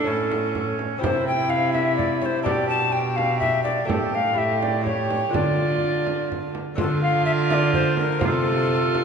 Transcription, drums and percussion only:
0.32 frame drum
0.55 frame drum
0.79 frame drum
1.04 frame drum
1.75 frame drum
1.99 frame drum
2.22 frame drum
2.46 frame drum
3.18 frame drum
3.41 frame drum
3.65 frame drum
3.90 frame drum
4.63 frame drum
4.86 frame drum
5.11 frame drum
5.34 frame drum
6.07 frame drum
6.32 frame drum
6.55 frame drum
6.78 frame drum
7.50 frame drum
7.73 frame drum
7.97 frame drum
8.21 frame drum
8.95 frame drum

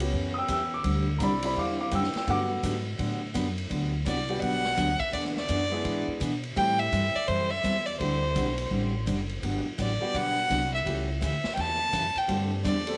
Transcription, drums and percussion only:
0.00 ride
0.13 kick
0.48 kick, hi-hat pedal, ride
0.84 kick, ride
1.20 kick, hi-hat pedal, ride
1.42 ride
1.56 kick
1.91 kick, hi-hat pedal, ride
2.04 snare
2.14 snare, ride
2.27 kick, ride
2.63 kick, hi-hat pedal, ride
2.99 kick, ride
3.35 kick, hi-hat pedal, ride
3.58 ride
3.71 kick, ride
4.06 kick, hi-hat pedal, ride
4.29 ride
4.42 kick, ride
4.64 snare
4.77 kick, hi-hat pedal, ride
5.00 kick, ride
5.13 kick, ride
5.25 snare
5.37 snare
5.49 kick, hi-hat pedal, ride
5.85 kick, ride
6.21 kick, hi-hat pedal, ride
6.43 ride
6.57 kick, ride
6.92 kick, hi-hat pedal, ride
7.28 kick, ride
7.64 kick, hi-hat pedal, ride
7.87 ride
8.00 kick, ride
8.36 kick, hi-hat pedal, ride
8.58 ride
8.71 kick
9.07 kick, hi-hat pedal, ride
9.29 ride
9.43 kick, ride
9.78 kick, hi-hat pedal, ride
10.14 kick, ride
10.50 kick, hi-hat pedal, ride
10.86 kick, ride
11.22 kick, hi-hat pedal, ride
11.44 snare
11.57 kick, ride
11.93 kick, hi-hat pedal, ride
12.16 ride
12.29 kick, ride
12.65 kick, hi-hat pedal, ride
12.87 ride

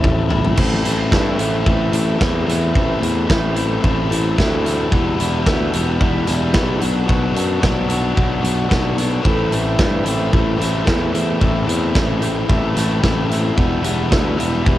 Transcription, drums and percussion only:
0.04 kick, mid tom
0.30 floor tom
0.45 floor tom
0.57 kick, crash
0.85 closed hi-hat
1.12 kick, snare
1.39 closed hi-hat
1.66 kick
1.93 closed hi-hat
2.21 kick, snare
2.49 snare, closed hi-hat
2.75 kick
3.03 closed hi-hat
3.30 kick, snare
3.56 closed hi-hat
3.84 kick
4.12 closed hi-hat
4.38 kick, snare
4.66 snare, closed hi-hat
4.92 kick
5.20 closed hi-hat
5.46 kick, snare
5.73 closed hi-hat
6.01 kick
6.27 snare, closed hi-hat
6.54 kick, snare
6.81 closed hi-hat
7.09 kick
7.36 closed hi-hat
7.63 kick, snare
7.89 closed hi-hat
8.17 kick
8.44 closed hi-hat
8.71 kick, snare
8.98 closed hi-hat
9.25 kick
9.52 closed hi-hat
9.79 kick, snare
10.06 closed hi-hat
10.33 kick
10.61 snare, closed hi-hat
10.87 kick, snare
11.15 closed hi-hat
11.41 kick
11.69 closed hi-hat
11.95 kick, snare
12.22 closed hi-hat
12.50 kick
12.77 snare, closed hi-hat
13.04 kick, snare
13.31 snare, closed hi-hat
13.58 kick
13.84 closed hi-hat
14.12 kick, snare
14.40 closed hi-hat
14.66 kick

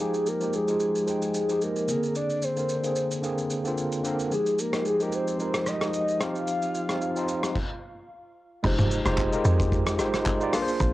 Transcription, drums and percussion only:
0.14 shaker
0.26 shaker
0.41 shaker
0.53 shaker
0.68 shaker
0.80 shaker
0.95 shaker
1.07 shaker
1.22 shaker
1.34 shaker
1.49 shaker
1.61 shaker
1.76 shaker
1.88 shaker
2.03 shaker
2.15 shaker
2.30 shaker
2.42 shaker
2.57 shaker
2.69 shaker
2.84 shaker
2.96 shaker
3.11 shaker
3.24 shaker
3.38 shaker
3.50 shaker
3.65 shaker
3.77 shaker
3.92 shaker
4.05 shaker
4.19 shaker
4.31 shaker
4.46 shaker
4.59 shaker
4.73 cross-stick, shaker
4.85 shaker
5.00 shaker
5.12 shaker
5.28 shaker
5.40 shaker
5.54 cross-stick, shaker
5.66 cross-stick, shaker
5.81 cross-stick, shaker
5.94 shaker
6.08 shaker
6.21 cross-stick, shaker
6.35 shaker
6.47 shaker
6.62 shaker
6.75 shaker
6.89 cross-stick, shaker
7.01 shaker
7.16 shaker
7.28 shaker
7.43 cross-stick, shaker
7.56 kick, crash
8.64 kick, crash
8.78 mid tom, shaker
8.91 shaker
9.05 cross-stick, shaker
9.18 kick, clap, shaker
9.33 shaker
9.45 shaker
9.60 kick, shaker
9.72 kick, shaker
9.87 cross-stick, shaker
9.99 cross-stick, shaker
10.14 cross-stick, shaker
10.26 kick, clap, shaker
10.41 shaker
10.53 cross-stick, open hi-hat, shaker
10.68 shaker
10.80 kick, hi-hat pedal, shaker

